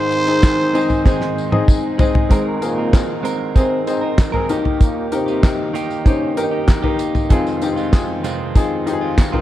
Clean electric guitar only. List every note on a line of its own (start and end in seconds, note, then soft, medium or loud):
0.00 0.27 G#3 medium
0.00 0.27 C4 medium
0.00 0.26 D#4 medium
0.00 0.25 G#4 medium
0.26 0.72 G#3 medium
0.26 0.73 C4 medium
0.26 0.74 D#4 medium
0.26 0.73 G#4 medium
0.73 1.04 G#3 medium
0.73 1.04 C4 medium
0.73 1.05 D#4 medium
0.73 1.05 G#4 medium
1.04 1.52 G#2 medium
1.04 1.52 D#3 medium
1.04 1.52 G#3 medium
1.04 1.52 C4 medium
1.04 1.51 D#4 medium
1.04 1.49 G#4 loud
1.51 1.97 G#3 medium
1.51 1.98 C4 medium
1.51 1.99 D#4 medium
1.51 1.98 G#4 medium
1.98 2.28 G#3 medium
1.98 2.29 C4 medium
1.98 2.30 D#4 medium
1.98 2.31 G#4 medium
2.29 2.77 G#3 medium
2.29 2.77 C4 medium
2.29 2.77 D#4 medium
2.29 2.75 A#4 medium
2.76 3.23 C4 soft
2.76 3.23 D#4 medium
2.76 3.24 A#4 medium
3.23 3.53 G#3 medium
3.23 3.54 C4 medium
3.23 3.55 D#4 medium
3.23 3.56 A#4 loud
3.54 4.02 G#3 medium
3.54 4.02 C4 medium
3.54 4.02 D#4 medium
3.54 4.00 A#4 medium
4.01 4.33 C4 medium
4.01 4.32 D#4 medium
4.01 4.31 A#4 medium
4.32 4.48 G#3 medium
4.32 4.49 C4 medium
4.32 4.49 D#4 medium
4.32 4.49 A#4 medium
4.48 5.73 D#3 medium
4.48 5.27 A#3 medium
4.48 5.28 D#4 medium
4.48 5.25 G4 medium
5.26 5.73 A#3 medium
5.26 5.74 D#4 medium
5.26 5.74 G4 medium
5.73 6.03 D#3 medium
5.73 6.04 A#3 medium
5.73 6.05 D#4 medium
5.73 6.06 G4 loud
6.05 6.52 D#3 medium
6.05 6.52 A#3 medium
6.05 6.52 D#4 medium
6.05 6.50 G4 medium
6.51 6.83 A#3 soft
6.51 6.82 D#4 medium
6.51 6.81 G4 medium
6.83 7.28 D#3 medium
6.83 7.30 A#3 medium
6.83 7.30 D#4 medium
6.83 7.30 G4 medium
7.29 7.77 D#3 medium
7.29 7.77 G#3 medium
7.29 7.76 C4 medium
7.29 7.75 F4 medium
7.76 8.23 D#3 soft
7.76 8.23 G#3 soft
7.76 8.24 C4 medium
7.76 8.24 F4 medium
8.23 8.55 F2 medium
8.23 8.55 C3 loud
8.23 8.53 D#3 medium
8.23 8.54 G#3 medium
8.23 8.55 C4 loud
8.23 8.56 F4 medium
8.54 9.02 D#3 medium
8.54 9.02 G#3 medium
8.54 9.01 C4 medium
8.54 9.00 F4 medium
9.01 9.33 D#3 medium
9.01 9.32 G#3 soft
9.01 9.32 C4 medium
9.01 9.31 F4 medium
9.32 9.41 F2 medium
9.32 9.41 C3 medium
9.32 9.41 D#3 medium
9.32 9.41 G#3 medium
9.32 9.41 C4 medium
9.32 9.41 F4 medium